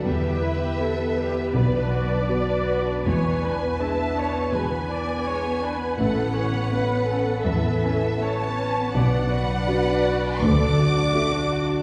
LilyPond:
<<
  \new Staff \with { instrumentName = "Violin section" } { \time 4/4 \key e \dorian \tempo 4 = 82 e''2 d''2 | gis''4 a''4 gis''2 | fis''2 e''4 a''4 | fis''2 d'''2 | }
  \new Staff \with { instrumentName = "Viola section" } { \time 4/4 \key e \dorian g'8 b'8 a'8 g'8 b'8 d''4. | cis''8 b'8 e''8 cis''8 b'8 d''8 cis''8 b'8 | a'8 cis''8 b'8 a'4. cis''4 | d''8 b'4. a'8 fis'4. | }
  \new Staff \with { instrumentName = "Grand piano" } { \time 4/4 \key e \dorian e,4 <b g' b'>4 b,,4 <b fis' b'>4 | e,4 <b d' b'>2. | a,,4 <b cis' b'>2. | b,,4 <d' fis' b'>4 d,4 <d' fis' a'>4 | }
  \new Staff \with { instrumentName = "Harp" } { \time 4/4 \key e \dorian \tuplet 3/2 { e8 e'8 b8 g'8 b'8 g'8 b,8 fis8 b8 fis'8 b'8 fis'8 } | \tuplet 3/2 { e8 b8 d'8 b'8 d'8 b'8 e8 b8 d'8 b'8 d'8 b'8 } | \tuplet 3/2 { a,8 e8 b8 cis'8 b'8 cis'8 a,8 e8 b8 cis'8 b'8 cis'8 } | \tuplet 3/2 { b,8 fis8 d'8 fis'8 b'8 fis'8 d8 a8 d'8 fis'8 a'8 fis'8 } | }
  \new Staff \with { instrumentName = "Violin section" } { \time 4/4 \key e \dorian << { b'1~ | b'1 | b'1 | d''1 | } \\ { g16 b16 e'16 g'16 e'16 b16 g16 b16 b16 d'16 fis'16 d'16 b16 d'16 fis'16 d'16 | gis16 b16 d'16 b16 gis16 b16 d'16 b16 gis16 b16 d'16 b16 gis16 b16 d'16 b16 | a16 b16 cis'16 b16 a16 b16 cis'16 b16 a16 b16 cis'16 b16 a16 b16 cis'16 b16 | b16 d'16 fis'16 d'16 b16 d'16 fis'16 d'16 a16 d'16 fis'16 d'16 a16 d'16 fis'16 d'16 | } >> }
  \new Staff \with { instrumentName = "Cello section" } { \clef bass \time 4/4 \key e \dorian e,4 r4 b,4 r4 | e,4 r4 b,4 r4 | a,4 r4 e,4 r4 | b,4 r4 d,4 r4 | }
>>